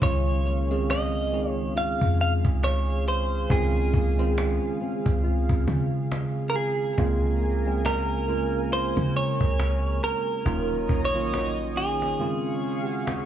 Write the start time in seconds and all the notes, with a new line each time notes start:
Already playing: C#4 F#4
0.01 C#2 C#3 D#3 G#3 C#4 F4 G#4 C#5 F5, cajon bass
0.45 A#3, cajon slap
0.70 D#3 G#3 C4 C#4 G#4
0.89 F4 D#5, cajon slap
1.32 D#3 G#3 C4 C#4 D#4, cajon slap
1.50 C#5
1.76 F4 F5, cajon slap
2.01 F2, cajon bass
2.20 F5, cajon slap
2.45 C#2, cajon bass
2.64 C#5, cajon slap
3.06 C5, cajon slap
3.21 cajon slap
3.35 cajon slap
3.49 C#2 C#3 D#3 G#3 C4 C#4 F4 G#4, cajon bass
3.93 C#2 A#3, cajon bass
4.18 D#3 G#3 C4 C#4 F4
4.37 F4, cajon slap
4.80 C4, cajon slap
5.06 C#2, cajon bass
5.24 F4, cajon slap
5.49 C#2, cajon bass
5.67 C#3, cajon bass
6.11 cajon slap
6.50 A#4
6.54 G#4, cajon slap
6.69 cajon slap
6.83 cajon slap
6.98 C#2 C#3 G#3 A#3 C4 F4 A#4 G#5, cajon bass
7.41 A#3, cajon slap
7.66 C#3 G#3 A#3 C4 G#4
7.85 F4 A#4, cajon slap
8.28 C#3 G#3 A#3 C#4 F4, cajon slap
8.71 F4 C5, cajon slap
8.97 C#3, cajon bass
9.16 C#5, cajon slap
9.40 C#2, cajon bass
9.59 cajon slap
10.02 A#4, cajon slap
10.17 cajon slap
10.31 cajon slap
10.45 D#1 D#3 F#3 A#3 C#4 F4 C#5 D#5 D#6, cajon bass
10.89 A#1 C#4, cajon bass
11.05 C#5
11.14 D#3 F#3 A#3 C#4 F4
11.32 F#4, cajon slap
11.76 C#4 G#4, cajon slap
12.02 cajon slap
12.19 C#3 D#3 G#3 C4 C#4 F4 G#4 F5 C#6, cajon slap
12.64 cajon slap
12.89 F#4
13.07 cajon slap